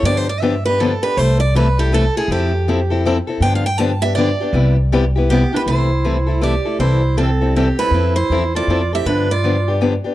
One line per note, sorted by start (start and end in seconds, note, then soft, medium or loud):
0.03 0.94 G2 medium
0.03 0.26 D3 medium
0.03 0.26 F3 medium
0.03 0.26 B3 medium
0.03 0.26 D4 medium
0.03 0.26 G4 medium
0.03 0.17 D5 medium
0.17 0.29 C5 medium
0.29 0.40 D5 medium
0.40 0.53 D3 medium
0.40 0.53 F3 medium
0.40 0.54 B3 medium
0.40 0.54 D4 medium
0.40 0.54 G4 medium
0.40 0.64 E5 medium
0.66 0.80 B3 soft
0.66 0.80 D4 medium
0.66 0.80 G4 medium
0.66 0.79 B4 medium
0.80 0.91 D3 medium
0.80 0.92 F3 medium
0.80 0.92 B3 medium
0.80 0.92 D4 medium
0.80 0.92 G4 medium
0.80 1.03 A4 medium
1.02 1.17 B3 soft
1.02 1.17 D4 soft
1.02 1.16 G4 medium
1.02 1.17 B4 medium
1.17 2.07 C2 medium
1.17 1.39 C3 medium
1.17 1.39 E3 medium
1.17 1.39 A3 medium
1.17 1.39 E4 medium
1.17 1.40 A4 medium
1.17 1.39 C5 medium
1.40 1.54 D5 medium
1.55 1.66 C3 medium
1.55 1.66 E3 medium
1.55 1.66 A3 medium
1.55 1.67 E4 medium
1.55 1.67 A4 medium
1.55 1.78 B4 medium
1.79 1.92 A3 soft
1.79 1.92 E4 soft
1.79 1.92 G4 medium
1.79 1.92 A4 medium
1.92 2.03 C3 medium
1.92 2.04 E3 medium
1.92 2.04 A3 medium
1.92 2.04 E4 medium
1.92 2.04 A4 medium
1.92 2.16 A4 medium
2.16 2.31 A3 soft
2.16 2.30 E4 medium
2.16 2.30 G#4 medium
2.16 2.30 A4 medium
2.28 3.19 F2 medium
2.28 2.51 F3 medium
2.28 2.51 C4 medium
2.28 2.51 E4 medium
2.28 3.02 G4 medium
2.28 2.52 A4 medium
2.68 2.79 F3 medium
2.68 2.79 C4 medium
2.68 2.79 E4 medium
2.68 2.79 A4 medium
2.90 3.05 C4 soft
2.90 3.04 E4 medium
2.90 3.04 A4 medium
3.05 3.16 F3 medium
3.05 3.17 C4 loud
3.05 3.17 E4 loud
3.05 3.17 A4 loud
3.27 3.42 C4 soft
3.27 3.42 E4 medium
3.27 3.41 A4 medium
3.40 4.31 G2 medium
3.40 3.63 D3 medium
3.40 3.63 F3 medium
3.40 3.63 B3 medium
3.40 3.63 D4 medium
3.40 3.64 G4 medium
3.40 3.54 G5 medium
3.55 3.66 F5 medium
3.66 3.78 G5 medium
3.78 3.90 D3 medium
3.78 3.91 F3 medium
3.78 3.91 B3 medium
3.78 3.91 D4 medium
3.78 3.91 G4 medium
3.78 4.01 A5 loud
4.02 4.17 B3 soft
4.02 4.17 D4 medium
4.02 4.17 G4 medium
4.02 4.15 E5 medium
4.15 4.28 D3 medium
4.15 4.29 F3 medium
4.15 4.29 B3 medium
4.15 4.29 D4 medium
4.15 4.29 G4 medium
4.15 4.73 D5 medium
4.40 4.53 B3 medium
4.40 4.54 D4 medium
4.40 4.54 G4 medium
4.53 5.44 C2 medium
4.53 4.75 C3 medium
4.53 4.75 G3 medium
4.53 4.76 B3 medium
4.53 4.76 E4 medium
4.53 4.76 G4 medium
4.92 5.04 C3 loud
4.92 5.04 G3 medium
4.92 5.04 B3 medium
4.92 5.04 E4 medium
4.92 5.04 G4 loud
5.16 5.30 B3 soft
5.16 5.30 E4 medium
5.16 5.29 G4 medium
5.30 5.42 C3 medium
5.30 5.42 G3 medium
5.30 5.52 B3 medium
5.30 5.42 B3 medium
5.30 5.42 E4 loud
5.30 5.54 G4 medium
5.30 5.42 G4 medium
5.53 5.68 B3 medium
5.53 5.60 D4 medium
5.53 5.67 E4 medium
5.53 5.67 G4 medium
5.53 5.61 B4 medium
5.66 6.57 C2 medium
5.66 5.89 C3 medium
5.66 5.89 E3 medium
5.66 5.90 A3 medium
5.66 6.38 E4 medium
5.66 5.90 E4 medium
5.66 5.90 A4 medium
5.66 6.43 C5 medium
6.05 6.16 C3 medium
6.05 6.16 E3 medium
6.05 6.16 A3 medium
6.05 6.16 E4 medium
6.05 6.17 A4 medium
6.26 6.40 A3 soft
6.26 6.41 E4 soft
6.26 6.41 A4 soft
6.41 6.53 C3 medium
6.41 6.53 E3 medium
6.41 6.53 A3 medium
6.41 6.54 E4 medium
6.41 6.78 G4 medium
6.41 6.54 A4 medium
6.41 6.79 D5 medium
6.65 6.80 A3 soft
6.65 6.79 E4 soft
6.65 6.79 A4 medium
6.79 7.70 C2 medium
6.79 7.01 C3 medium
6.79 7.01 E3 medium
6.79 7.01 G3 medium
6.79 7.01 C4 medium
6.79 7.01 E4 medium
6.79 7.16 E4 medium
6.79 7.02 A4 medium
6.79 7.15 C5 medium
7.17 7.29 C3 medium
7.17 7.29 E3 medium
7.17 7.29 G3 medium
7.17 7.29 C4 medium
7.17 7.54 C4 medium
7.17 7.29 E4 medium
7.17 7.29 A4 medium
7.17 7.56 A4 medium
7.41 7.55 G3 soft
7.41 7.56 C4 soft
7.41 7.55 E4 soft
7.41 7.55 A4 soft
7.56 7.67 C3 medium
7.56 7.67 E3 medium
7.56 7.67 G3 medium
7.56 7.78 C4 medium
7.56 7.67 C4 medium
7.56 7.67 E4 medium
7.56 7.80 G4 medium
7.56 7.68 A4 medium
7.78 7.93 G3 soft
7.78 7.93 C4 soft
7.78 8.14 E4 medium
7.78 7.93 E4 soft
7.78 7.93 A4 soft
7.78 8.14 B4 medium
7.91 8.22 F2 medium
7.91 8.15 F3 medium
7.91 8.15 C4 medium
7.91 8.15 E4 medium
7.91 8.15 A4 medium
8.16 8.53 E4 medium
8.16 8.56 C5 medium
8.30 8.62 E2 medium
8.30 8.42 F3 medium
8.30 8.43 C4 medium
8.30 8.43 E4 medium
8.30 8.43 A4 medium
8.55 8.69 C4 soft
8.55 8.68 E4 soft
8.55 8.91 F4 medium
8.55 8.68 A4 soft
8.55 8.91 D5 medium
8.67 9.00 F2 medium
8.67 8.80 F3 medium
8.67 8.81 C4 medium
8.67 8.80 E4 medium
8.67 8.81 A4 medium
8.93 9.06 C4 soft
8.93 9.06 E4 soft
8.93 9.05 G4 medium
8.93 9.06 A4 soft
8.93 9.06 E5 medium
9.05 9.96 G2 medium
9.05 9.27 D3 medium
9.05 9.27 F3 medium
9.05 9.27 B3 medium
9.05 9.28 D4 medium
9.05 9.29 D4 medium
9.05 9.28 G4 medium
9.05 9.30 B4 medium
9.31 9.79 F4 medium
9.31 9.79 D5 medium
9.44 9.55 D3 medium
9.44 9.55 F3 medium
9.44 9.55 B3 medium
9.44 9.56 D4 medium
9.44 9.56 G4 medium
9.68 9.80 B3 soft
9.68 9.81 D4 soft
9.68 9.80 G4 soft
9.81 9.92 D3 medium
9.81 9.93 F3 medium
9.81 9.93 B3 medium
9.81 9.93 D4 medium
9.81 9.93 G4 medium
10.04 10.15 B3 soft
10.04 10.15 D4 soft
10.04 10.15 G4 medium